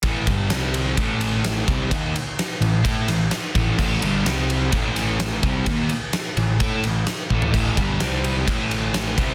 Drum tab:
CC |----------------|----------------|x---------------|----------------|
RD |x-x-x-x-x-x-x-x-|x-x-x-x-x-x-x-x-|--x-x-x-x-x-x-x-|x-x-x-x-x-x-x---|
SD |----o-----o-o---|----o-----o-o---|----o-----o-o---|----o-------o---|
FT |----------------|----------------|----------------|---------------o|
BD |o-o-----o-----o-|o-------o-----o-|o-------o-----o-|o-------o-----o-|

CC |x---------------|
RD |--x-x-x-x-x-x-x-|
SD |----o-------o---|
FT |----------------|
BD |o-o-----o-----o-|